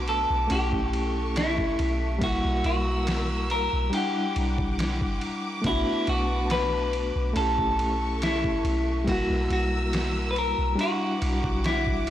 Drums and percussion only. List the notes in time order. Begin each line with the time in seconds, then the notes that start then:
0.08 ride
0.50 ride
0.73 kick
0.93 ride
1.36 snare, ride
1.58 kick
1.79 ride
2.21 kick, ride
2.64 ride
3.07 snare, ride
3.50 ride
3.93 ride
4.36 ride
4.58 kick
4.79 snare, ride
5.01 kick
5.21 ride
5.64 kick, ride
6.07 ride
6.50 snare, ride
6.93 ride
7.36 ride
7.58 kick
7.79 ride
8.22 snare, ride
8.44 kick
8.65 ride
9.07 kick, ride
9.50 ride
9.93 snare, ride
10.36 ride
10.79 ride
11.22 ride
11.44 kick
11.64 snare, ride
11.87 kick